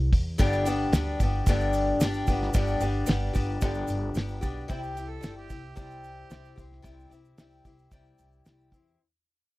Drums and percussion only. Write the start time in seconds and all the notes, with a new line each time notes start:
0.13 kick, open hi-hat
0.39 kick, open hi-hat, shaker
0.53 shaker
0.66 open hi-hat, shaker
0.93 snare, open hi-hat, shaker
1.20 kick, open hi-hat, shaker
1.46 kick, open hi-hat, shaker
1.60 shaker
1.73 open hi-hat, shaker
2.00 snare, open hi-hat, shaker
2.14 shaker
2.27 kick, open hi-hat, shaker
2.42 snare
2.54 kick, open hi-hat, shaker
2.67 shaker
2.81 open hi-hat, shaker
3.06 snare, open hi-hat, shaker
3.34 kick, open hi-hat, shaker
3.61 kick, open hi-hat, shaker
3.74 shaker
3.88 open hi-hat, shaker
4.15 snare, open hi-hat, shaker
4.28 shaker
4.42 kick, open hi-hat, shaker
4.69 kick, open hi-hat, shaker
4.83 shaker
4.97 open hi-hat, shaker
5.23 snare, open hi-hat, shaker
5.50 kick, open hi-hat, shaker
5.77 kick, open hi-hat, shaker
5.91 shaker
6.04 open hi-hat, shaker
6.30 snare, open hi-hat, shaker
6.45 shaker
6.58 kick, open hi-hat, shaker
6.72 snare
6.84 kick, open hi-hat, shaker
7.00 shaker
7.12 open hi-hat, shaker
7.25 shaker
7.38 snare, open hi-hat, shaker
7.52 shaker
7.65 kick, open hi-hat, shaker
7.79 shaker
7.91 kick, open hi-hat, shaker
8.05 shaker
8.18 open hi-hat, shaker
8.32 shaker
8.46 snare, open hi-hat, shaker
8.60 shaker
8.72 kick, open hi-hat, shaker
8.87 shaker